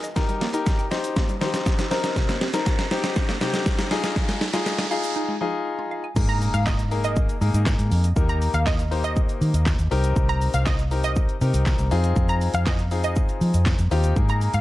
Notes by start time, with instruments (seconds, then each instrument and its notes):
Already playing: riser
0.04 synth arpeggio sound D#5, closed hi-hat, shaker
0.16 synth arpeggio sound D#3, grand piano D#4 G4 A#4, kick, snare, shaker
0.29 synth arpeggio sound G3, closed hi-hat, shaker
0.41 synth arpeggio sound A#3, snare, open hi-hat, shaker
0.53 grand piano D#4 G4 A#4, synth arpeggio sound D#4, closed hi-hat, shaker
0.66 kick, snare, shaker
0.79 synth arpeggio sound G5, closed hi-hat, shaker
0.91 grand piano D#4 G4 C5, synth arpeggio sound D#5, snare, open hi-hat, shaker
1.04 closed hi-hat, shaker
1.16 synth arpeggio sound A#3, kick, snare, shaker
1.29 synth arpeggio sound G3, closed hi-hat, shaker
1.41 synth arpeggio sound D#3, grand piano D#4 G4 C5, snare, open hi-hat, shaker
1.54 snare, closed hi-hat, shaker
1.66 kick, snare, shaker
1.79 synth arpeggio sound D#4, snare, closed hi-hat, shaker
1.91 grand piano C4 D#4 A#4, synth arpeggio sound C5, snare, open hi-hat, shaker
2.04 synth arpeggio sound A#5, snare, closed hi-hat, shaker
2.16 synth arpeggio sound C3, kick, snare, shaker
2.29 synth arpeggio sound A#3, snare, closed hi-hat, shaker
2.41 synth arpeggio sound C4, snare, open hi-hat, shaker
2.54 grand piano C4 D#4 A#4, synth arpeggio sound D#4, snare, closed hi-hat, shaker
2.66 kick, snare, shaker
2.79 synth arpeggio sound A#5, snare, closed hi-hat, shaker
2.91 grand piano C4 D#4 G4, synth arpeggio sound C5, snare, open hi-hat, shaker
3.04 snare, closed hi-hat, shaker
3.16 synth arpeggio sound C4, kick, snare, shaker
3.29 synth arpeggio sound A#3, snare, closed hi-hat, shaker
3.41 synth arpeggio sound C3, grand piano C4 D#4 G4, snare, open hi-hat, shaker
3.54 snare, closed hi-hat, shaker
3.66 kick, snare, shaker
3.79 synth arpeggio sound D#4, snare, closed hi-hat, shaker
3.91 grand piano D#4 F4 G#4, synth arpeggio sound F5, snare, open hi-hat, shaker
4.04 synth arpeggio sound G#5, snare, closed hi-hat, shaker
4.16 synth arpeggio sound F3, kick, snare, shaker
4.29 synth arpeggio sound G#3, snare, closed hi-hat, shaker
4.41 synth arpeggio sound D#4, snare, open hi-hat, shaker
4.53 grand piano D#4 F4 G#4, synth arpeggio sound F4, snare, closed hi-hat, shaker
4.66 snare, shaker
4.78 synth arpeggio sound G#5, snare, closed hi-hat, shaker
4.91 grand piano D#4 F4 G#4, synth arpeggio sound F5, open hi-hat, shaker
5.04 closed hi-hat, shaker
5.16 synth arpeggio sound D#4
5.29 synth arpeggio sound G#3
5.41 synth arpeggio sound F3, grand piano D#4 F4 G#4
5.79 synth arpeggio sound F4
5.91 synth arpeggio sound F5
6.04 synth arpeggio sound G#5
6.16 fingered electric bass G#2, grand piano A#3 D#4 G#4 A#4, kick, crash, impact, shaker
6.29 synth pluck A#5, closed hi-hat, shaker
6.42 open hi-hat, shaker
6.54 fingered electric bass G#2, synth pluck F5, closed hi-hat, shaker
6.67 synth pluck D#5, kick, snare, clap, shaker
6.79 closed hi-hat, shaker
6.91 grand piano A#3 D#4 G#4 A#4, open hi-hat, shaker
7.04 synth pluck D#5, closed hi-hat, shaker
7.16 kick, shaker
7.29 closed hi-hat, shaker
7.41 fingered electric bass G#2, grand piano A#3 D#4 G#4 A#4, open hi-hat, shaker
7.54 fingered electric bass G#2, closed hi-hat, shaker
7.66 kick, snare, clap, shaker
7.79 fingered electric bass G#2, closed hi-hat, shaker
7.91 fingered electric bass F2, open hi-hat, shaker
8.04 closed hi-hat, shaker
8.16 fingered electric bass D#2, grand piano A#3 D#4 G4 A#4, kick, shaker
8.29 synth pluck A#5, closed hi-hat, shaker
8.42 open hi-hat, shaker
8.54 fingered electric bass D#2, synth pluck F5, closed hi-hat, shaker
8.67 synth pluck D#5, kick, snare, clap, shaker
8.79 closed hi-hat, shaker
8.91 grand piano A#3 D#4 G4 C5, open hi-hat, shaker
9.04 synth pluck D#5, closed hi-hat, shaker
9.16 kick, shaker
9.29 closed hi-hat, shaker
9.41 fingered electric bass D#3, open hi-hat, shaker
9.54 fingered electric bass D#2, closed hi-hat, shaker
9.66 kick, snare, clap, shaker
9.79 fingered electric bass D#2, closed hi-hat, shaker
9.91 fingered electric bass C2, grand piano C4 D#4 G4 A#4, open hi-hat, shaker
10.04 closed hi-hat, shaker
10.16 fingered electric bass C2, kick, shaker
10.29 synth pluck A#5, closed hi-hat, shaker
10.42 open hi-hat, shaker
10.54 fingered electric bass C2, synth pluck F5, closed hi-hat, shaker
10.66 synth pluck D#5, kick, snare, clap, shaker
10.79 closed hi-hat, shaker
10.91 grand piano C4 D#4 G4 A#4, open hi-hat, shaker
11.04 synth pluck D#5, closed hi-hat, shaker
11.16 kick, shaker
11.29 closed hi-hat, shaker
11.41 fingered electric bass C3, grand piano C4 D#4 G4 A#4, open hi-hat, shaker
11.54 fingered electric bass C2, closed hi-hat, shaker
11.66 kick, snare, clap, shaker
11.79 fingered electric bass C2, closed hi-hat, shaker
11.91 fingered electric bass F2, grand piano C4 D#4 F4 G#4, open hi-hat, shaker
12.04 closed hi-hat, shaker
12.16 fingered electric bass F2, kick, shaker
12.29 synth pluck A#5, closed hi-hat, shaker
12.41 open hi-hat, shaker
12.54 fingered electric bass F2, synth pluck F5, closed hi-hat, shaker
12.66 synth pluck D#5, kick, snare, clap, shaker
12.79 closed hi-hat, shaker
12.91 grand piano C4 D#4 F4 G#4, open hi-hat, shaker
13.04 synth pluck D#5, closed hi-hat, shaker
13.16 kick, shaker
13.29 closed hi-hat, shaker
13.41 fingered electric bass F3, open hi-hat, shaker
13.54 fingered electric bass F2, closed hi-hat, shaker
13.66 kick, snare, clap, shaker
13.79 fingered electric bass F2, closed hi-hat, shaker
13.91 fingered electric bass D#2, grand piano C4 D#4 F4 G4, open hi-hat, shaker
14.04 closed hi-hat, shaker
14.16 fingered electric bass G#2, grand piano A#3 D#4 G#4 A#4, kick, shaker
14.29 synth pluck A#5, closed hi-hat, shaker
14.41 open hi-hat, shaker
14.54 fingered electric bass G#2, synth pluck F5, closed hi-hat, shaker